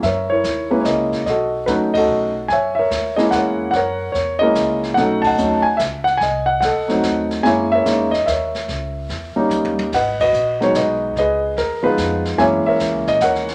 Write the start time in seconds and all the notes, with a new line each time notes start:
0.03 F#2 A#4 C#5 E5, brush sweep, snare
0.30 E4 A#4 C#5
0.44 D#2, kick, snare, hi-hat pedal
0.71 G#3 A#3 C#4 E4 B4
0.81 C#5, snare, hi-hat pedal
0.85 C#2 A#4 D#5, kick
1.12 kick, snare
1.26 B1 F#4 A4 D#5, brush sweep, kick, snare
1.66 D#2 F#3 A3 C#4 D#4 B4, kick, snare, hi-hat pedal
1.94 F#4 A4 D#5, kick, crash
2.07 B1
2.48 F#2 G#5, brush sweep, kick, snare
2.52 C#5 E5
2.75 E5
2.79 A#4 C#5
2.90 D#2, kick, snare, hi-hat pedal
3.16 G#3 A#3 C#4 E4 D#5, snare
3.31 E2 F#5, kick, snare, hi-hat pedal
3.35 A#4 C#5
3.71 F#2 F#5, brush sweep, kick, snare
3.75 A#4 C#5
4.12 E2 C#5, kick, snare
4.39 G#3 A#3 C#4 E4 D#5
4.43 A#4
4.55 C#2, kick, snare, hi-hat pedal
4.83 snare
4.94 B1 F#3 A3 C#4 D#4 F#5, brush sweep, kick, snare
4.98 A4 D#5
5.22 A5, kick, crash
5.27 D#5 F#5
5.38 D#2 F#3 A3 C#4 D#4, hi-hat pedal
5.62 G#5
5.77 C#2 E5, kick, snare, hi-hat pedal
6.04 F#5, snare
6.17 C2 G#5, brush sweep, kick, snare
6.23 D#5
6.46 F#5
6.61 D2 F#5, kick, snare, hi-hat pedal
6.65 A4 D#5
6.88 F#3 A3 C4 D#4, snare
7.03 D#2, kick, snare, hi-hat pedal
7.31 snare
7.43 F#2 G#3 A#3 C#4 E4 E5 G#5, brush sweep, kick, snare
7.47 C#5
7.72 A#4 C#5 E5
7.85 E2 G#3 A#3 C#4 D#4, kick, snare, hi-hat pedal
8.11 D#5, snare
8.26 D#2 A#4 C#5 E5, kick, snare, hi-hat pedal
8.55 snare
8.68 C#2, brush sweep, kick, snare
9.09 E2, kick, snare
9.36 G3 A#3 C#4 D#4, muted upright bass stroke
9.50 D#2, hi-hat pedal, high tom
9.65 high tom
9.79 high tom
9.92 G#1 B4 D#5 F#5, brush sweep, kick, snare, crash
10.20 F#4 B4 D#5, kick, crash
10.33 A#1, hi-hat pedal
10.60 F#3 G#3 B3 D#4 C#5, snare
10.75 B1 F#4 B4 D#5, kick, snare, hi-hat pedal
11.16 C#2 B4 D#5, brush sweep, kick, snare
11.20 G#4
11.57 D#2 A#4, kick, snare
11.83 F3 G#3 B3 D#4 F4 G#4 B4
11.97 F2, snare, hi-hat pedal
12.25 snare
12.38 F#2 E3 G#3 A#3 C#4 C#5 E5 G#5, brush sweep, kick, snare
12.66 A#4 C#5 E5, muted upright bass stroke
12.80 E2, kick, snare, hi-hat pedal
12.94 C#2
13.07 A#1 D#5, snare
13.21 D#2 A#4 C#5 F#5, kick, snare, hi-hat pedal
13.35 snare
13.48 snare